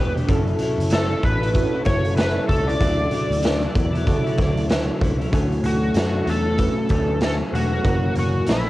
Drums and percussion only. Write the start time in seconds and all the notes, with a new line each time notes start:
0.17 closed hi-hat
0.28 kick, closed hi-hat
0.47 closed hi-hat
0.58 closed hi-hat
0.80 closed hi-hat
0.90 snare, closed hi-hat
1.10 closed hi-hat
1.23 kick, closed hi-hat
1.43 closed hi-hat
1.54 kick, closed hi-hat
1.85 kick, snare, closed hi-hat
2.05 closed hi-hat
2.17 snare, closed hi-hat
2.49 kick, closed hi-hat
2.69 closed hi-hat
2.81 kick, closed hi-hat
3.11 closed hi-hat
3.32 closed hi-hat
3.42 snare, closed hi-hat
3.62 closed hi-hat
3.75 kick, closed hi-hat
3.95 closed hi-hat
4.07 kick, closed hi-hat
4.27 closed hi-hat
4.38 kick, snare, closed hi-hat
4.57 closed hi-hat
4.69 snare, closed hi-hat
5.01 kick, closed hi-hat
5.21 closed hi-hat
5.33 kick, closed hi-hat
5.52 closed hi-hat
5.64 closed hi-hat
5.94 snare, closed hi-hat
6.27 closed hi-hat
6.58 kick, closed hi-hat
6.89 kick, closed hi-hat
7.21 snare, closed hi-hat
7.55 closed hi-hat
7.85 kick, closed hi-hat
8.15 closed hi-hat
8.46 snare, closed hi-hat